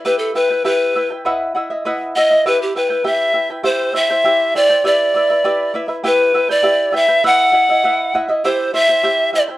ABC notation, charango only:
X:1
M:2/4
L:1/16
Q:1/4=100
K:Em
V:1 name="Charango"
[EGBeg]2 [EBeg] [EBg] [EGBeg]2 [EBeg] [EBg] | [EB^def]2 [Edef] [Ede] [EBdef]2 [Edef] [Ede] | [EGBeg]2 [EBeg] [EBg] [EGBeg]2 [EBeg] [EBg] | [EGceg]2 [Eceg] [Ecg] [EGceg]2 [Eceg] [Ecg] |
[EGBde]2 [EBde] [EBe] [EGBde]2 [EBde] [EBe] | [EGBeg]2 [EBeg] [EBg] [EGBeg]2 [EBeg] [EBg] | [EB^def]2 [Edef] [Ede] [EBdef]2 [Edef] [Ede] | [EGceg]2 [Eceg] [Ecg] [EGceg]2 [Eceg] [Ecg] |]